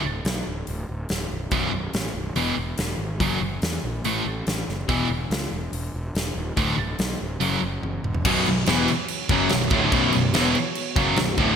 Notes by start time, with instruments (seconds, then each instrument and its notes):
0.04 picked electric bass D1
0.25 picked electric bass B1, snare, open hi-hat
0.47 picked electric bass D1
0.67 picked electric bass D1, open hi-hat
0.89 picked electric bass D1
1.09 picked electric bass D1, snare, open hi-hat
1.31 picked electric bass B0
1.51 picked electric bass B0, overdriven electric guitar B1 F#2 B2, kick, open hi-hat
1.72 picked electric bass B0
1.94 picked electric bass A1, snare, open hi-hat
2.15 picked electric bass B0
2.35 picked electric bass E1, overdriven electric guitar E2 B2 E3, open hi-hat
2.57 picked electric bass E1
2.78 picked electric bass E1, snare, open hi-hat
2.98 picked electric bass G#1
3.20 picked electric bass F#1, overdriven electric guitar F#2 C#3 F#3, kick, open hi-hat
3.41 picked electric bass F#1
3.62 picked electric bass E2, snare, open hi-hat
3.84 picked electric bass A#1
4.04 picked electric bass A1, overdriven electric guitar A2 E3 A3, open hi-hat
4.25 picked electric bass A1
4.47 picked electric bass A1, snare, open hi-hat
4.68 picked electric bass F#1, snare
4.88 picked electric bass E1, overdriven electric guitar E2 B2 E3, kick, open hi-hat
5.10 picked electric bass E1
5.30 picked electric bass C#2, snare, open hi-hat
5.52 picked electric bass E1
5.73 picked electric bass E1, open hi-hat
5.94 picked electric bass E1
6.15 picked electric bass E1, snare, open hi-hat
6.35 picked electric bass D#1
6.57 picked electric bass D1, overdriven electric guitar D2 A2 D3, kick, open hi-hat
6.78 picked electric bass D1
6.99 picked electric bass B1, snare, open hi-hat
7.21 picked electric bass D1
7.40 picked electric bass F#1, overdriven electric guitar F#2 C#3 F#3, open hi-hat
7.62 picked electric bass F#1
7.83 picked electric bass F#1, high tom
8.03 picked electric bass E1, mid tom
8.15 floor tom
8.25 picked electric bass B0, overdriven electric guitar B1 F#2 B2, analog synth pad B3 F#4 C#5, kick, crash
8.46 picked electric bass B0, overdriven electric guitar B1 F#2, crash
8.66 picked electric bass E1, overdriven electric guitar E2 B2 E3, snare, crash
8.88 crash
9.08 crash
9.29 picked electric bass F#1, overdriven electric guitar F#2 C#3 F#3, kick, crash
9.49 picked electric bass B0, overdriven electric guitar B1 F#2, snare, crash
9.70 picked electric bass D1, overdriven electric guitar D2 A2 D3, kick, crash
9.92 picked electric bass B0, overdriven electric guitar B1 F#2 B2, kick, crash
10.13 picked electric bass B0, overdriven electric guitar B1 F#2, crash
10.34 picked electric bass E1, overdriven electric guitar E2 B2 E3, snare, crash
10.55 crash
10.75 crash
10.95 picked electric bass F#1, overdriven electric guitar F#2 C#3 F#3, kick, crash
11.16 picked electric bass B0, overdriven electric guitar B1 F#2, snare, crash
11.37 picked electric bass D1, overdriven electric guitar D2 A2 D3, kick, crash